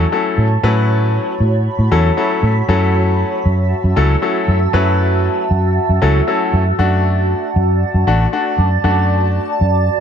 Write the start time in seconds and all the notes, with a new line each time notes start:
Already playing: F#4 C#5 A5
0.12 F#3 A3 C#4 E4 A4
0.38 A2
0.63 A2 F#3 A3 C#4 E4 B4 B5
1.40 A2
1.79 A2
1.91 E2 F#3 A3 C#4 E4 A4
2.17 F#3 A3 C#4 E4 A4 E5
2.43 A2
2.68 F#2 F#3 A3 C#4 E4 A4 E5 A5
3.46 F#2
3.84 F#2
3.96 C#2 F#3 A3 C#4 E4 A4
4.22 F#3 A3 C#4 E4 A4
4.48 F#2
4.73 F#2 F#3 A3 C#4 E4 B4
5.51 F#2
5.89 F#2
6.02 C#2 F#3 A3 C#4 E4 A4
6.27 F#3 A3 C#4 E4 A4
6.53 F#2
6.79 F#2 A3 D4 F#4 D5 A5
7.56 F#2
7.94 F#2
8.07 A1 A3 D4 F#4
8.33 A3 D4 F#4
8.58 F#2
8.84 F#2 A3 D4 F#4
9.61 F#2